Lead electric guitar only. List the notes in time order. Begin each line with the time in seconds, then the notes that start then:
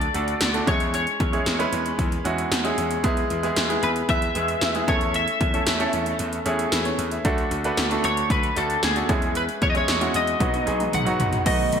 Already playing: D5
0.68 C#5
0.95 C#5
3.83 B4
4.10 E5
4.89 C#5
5.16 E5
8.05 C#5
8.31 B4
8.57 A4
8.84 G#4
9.37 B4
9.63 C#5
9.70 D#5
9.77 C#5
10.16 D#5
10.94 F#5
11.47 D#5